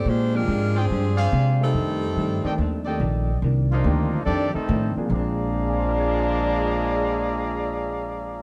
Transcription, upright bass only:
X:1
M:4/4
L:1/8
Q:"Swing" 1/4=142
K:Bbmix
V:1 name="Upright bass" clef=bass
B,,2 A,,2 G,,2 C,2 | F,,2 G,, z E,,2 B,,,2 | C,,2 D,,2 F,, z =A,, z | B,,,8- |
B,,,8 |]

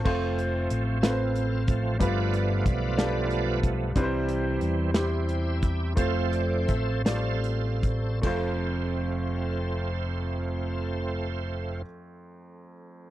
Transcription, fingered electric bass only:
X:1
M:6/8
L:1/8
Q:3/8=57
K:F
V:1 name="Fingered electric bass" clef=bass
F,,,2 A,,,4 | G,,,2 =B,,,4 | C,,2 E,,4 | F,,,2 A,,,4 |
F,,,6- | F,,,6 |]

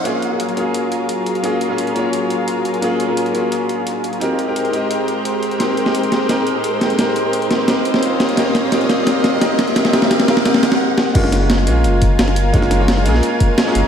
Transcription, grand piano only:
X:1
M:4/4
L:1/16
Q:1/4=173
K:Gblyd
V:1 name="Grand piano"
[B,DFA]3 [B,DFA]3 [B,DFA]8- [B,DFA]2 | [B,DFA]3 [B,DFA] z2 [B,DFd]8- [B,DFd]2 | [B,DFA]3 [B,DFA]3 [B,DFA]8- [B,DFA]2 | [CE=GB]3 [CEGB] z2 [CEGe]8- [CEGe]2 |
[CE=GB]3 [CEGB]3 [CEGB]2 [CEGB]3 [CEGB]3 [CEGB]2 | [CE=GB]3 [CEGB]3 [CEGB]2 [CEGB]3 [CEGB]3 [CEGB]2 | [CE=GB]3 [CEGB] [CEGB]3 [CEGB] [CEGB]3 [CEGB] [CEGB]3 [CEGB] | [CE=GB]2 [CEGB]2 [CEGB]2 [CEGB]2 [CEGB]2 [CEGB]2 z4 |
[A,B,DF]3 [A,B,DF]3 [A,B,DF]8- [A,B,DF]2 | [A,B,DF]3 [A,B,DF] z2 [A,B,DA]6- [A,B,DA] [A,B,DA]3 |]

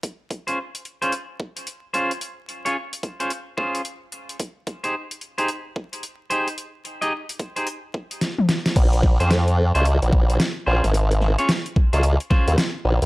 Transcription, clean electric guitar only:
X:1
M:4/4
L:1/16
Q:"Swing 16ths" 1/4=110
K:Bbdor
V:1 name="Clean electric guitar"
z3 [DFAc] z3 [DFAc] z6 [DFAc] z | z3 [DFAd] z3 [DFAc] z2 [DFAc]2 z4 | z3 [EGAc] z3 [EGAc] z6 [EGAc] z | z3 [EGAe] z3 [EGAc] z8 |
z3 [DFAc] z3 [DFAc] z6 [DFAc] z | z3 [DFAd] z3 [DFAc] z2 [DFAc]2 z4 |]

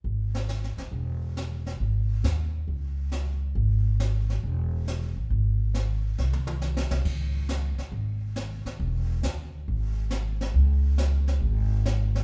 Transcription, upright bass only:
X:1
M:4/4
L:1/8
Q:"Swing" 1/4=137
K:C#m
V:1 name="Upright bass" clef=bass
G,,,3 F,,, E,,,4 | G,,,2 D,,2 C,,4 | G,,,4 E,,,3 A,,, | G,,,4 ^B,,,3 B,,, |
C,,3 z G,,,3 z | E,,,2 =D,,2 G,,,4 | C,,4 G,,,4 |]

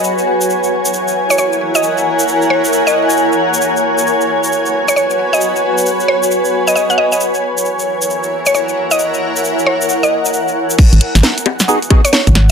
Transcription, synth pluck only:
X:1
M:4/4
L:1/16
Q:"Swing 16ths" 1/4=134
K:G#m
V:1 name="Synth pluck"
z8 z3 c c z2 d- | d z4 z c2 z d3 z4 | z8 z3 c c z2 d- | d z4 z c2 z3 d d f d d |
z8 z3 c c z2 d- | d z4 z c2 z d3 z4 | z8 z3 c c z3 |]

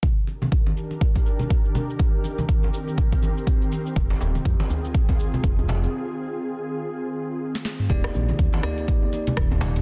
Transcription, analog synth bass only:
X:1
M:4/4
L:1/8
Q:"Swing 16ths" 1/4=122
K:Eb
V:1 name="Analog synth bass" clef=bass
z8 | z8 | F,,, E,,, F,, z3 F,,,2 | z8 |
E,,, B,,, E,, z3 E,,,2 |]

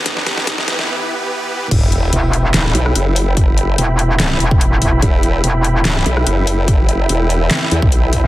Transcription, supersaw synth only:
X:1
M:4/4
L:1/8
Q:"Swing 16ths" 1/4=145
K:Em
V:1 name="Supersaw synth"
[E,B,GB]8 | [Eegb]8- | [Eegb]8- | [Eegb]8- |
[Eegb]8 |]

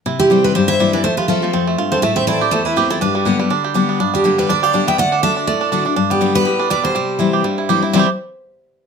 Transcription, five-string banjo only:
X:1
M:4/4
L:1/8
Q:"Swing" 1/4=244
K:C
V:1 name="Five-string banjo"
E C G, C G, E G, E, | A, F A, F, C A, F C | A, C E G A, E G E | D G, D, G, D G D B, |
D G, D, G, D G D B, | A, D D D A, D D D | D B, G, B, G, D G, D, | G,2 E G G, E G E |
[G,CEG] z6 z |]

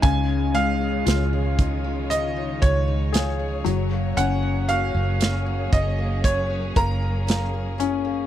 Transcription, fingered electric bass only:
X:1
M:4/4
L:1/16
Q:1/4=58
K:Gblyd
V:1 name="Fingered electric bass" clef=bass
D,,4 D,,6 D,,4 G,,,2 | G,,,3 G,,,3 G,,,4 G,,,6 |]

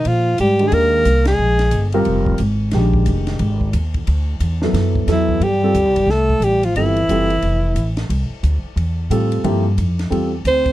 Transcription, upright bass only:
X:1
M:4/4
L:1/8
Q:"Swing" 1/4=179
K:Bbmix
V:1 name="Upright bass" clef=bass
B,,2 A,,2 E,,2 C,,2 | B,,,2 G,,,2 F,,,2 A,,,2 | B,,,2 F,,,2 A,,,2 E,,2 | D,,2 =E,,2 ^F,,2 E,,2 |
[K:Cmix] G,,2 (3D,, C,, G,,, C,,2 A,,,2 | G,,,2 ^F,,,2 =F,,,2 A,,,2 | C,, z D,, z E,,2 A,,2 | G,,2 F,,2 E,,2 D,,2 |]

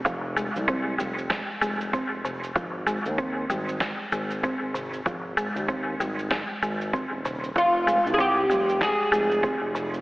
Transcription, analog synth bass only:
X:1
M:4/4
L:1/16
Q:"Swing 16ths" 1/4=96
K:Fm
V:1 name="Analog synth bass" clef=bass
F,,,3 C,,3 F,,,3 z F,,,3 F,,,3 | A,,,3 E,,3 A,,,3 z A,,,3 A,,,3 | A,,,3 E,,3 A,,,3 z A,,,3 E,,,3 | F,,,3 C,,3 F,,,3 z F,,,3 F,,,3 |]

